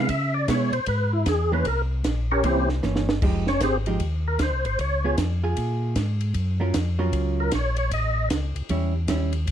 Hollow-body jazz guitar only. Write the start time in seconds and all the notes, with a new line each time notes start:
0.48 G#3 B3 E4
1.52 E3 A#3 C#4
2.44 E3 A#3 C#4
2.83 E3 A#3 C#4
3.22 F3 G#3 D#4 G4
3.87 F3 G#3 D#4 G4
5.04 B3 F4 G#4
5.44 F4 G#4
6.60 F#3 C#4 F4 A#4
6.99 F#3 C#4 F4 A#4
8.70 G3 C#4 E4
9.09 G3 C#4 E4